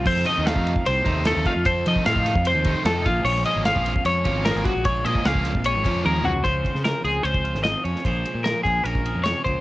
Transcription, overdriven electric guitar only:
\new Staff \with { instrumentName = "Overdriven electric guitar" } { \clef bass \time 4/4 \key bes \minor \tempo 4 = 150 r8 <c ees a ees'>8 <c ees a ees'>8 r4 <c ees a ees'>8 <c ees a ees'>8 r8 | r8 <c ees a ees'>8 <c ees a ees'>8 r4 <c ees a ees'>8 <c ees a ees'>8 r8 | r8 <bes, f bes des'>8 <bes, f bes des'>8 r4 <bes, f bes des'>8 <bes, f bes des'>8 r8 | r8 <bes, f bes des'>8 <bes, f bes des'>8 r4 <bes, f bes des'>8 <bes, f bes des'>8 r8 |
r1 | r1 | }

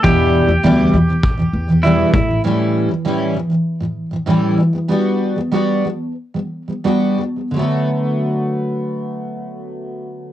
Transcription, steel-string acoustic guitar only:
\new Staff \with { instrumentName = "Steel-string acoustic guitar" } { \clef bass \time 4/4 \key d \major \tempo 4 = 95 <e, b, e g d' e'>8. <e, b, e>16 <e, b, e g d' e'>8 <e, b, e>16 <e, b, e>8 <e, b, e>8 <e, b, e>16 <e, b, e g d' e'>8 <a, e>16 <a, e>16 | <a, e g cis' e'>8. <a, e>16 <a, e g cis' e'>8 <a, e>16 <a, e>8 <a, e>8 <a, e>16 <a, e g cis' e'>8 <g b>16 <g b>16 | <g b d' fis'>8. <g b>16 <g b d' fis'>8 <g b>8 r16 <g b>8 <g b>16 <g b d' fis'>8 <g b>16 <g b>16 | <d fis a b fis'>1 | }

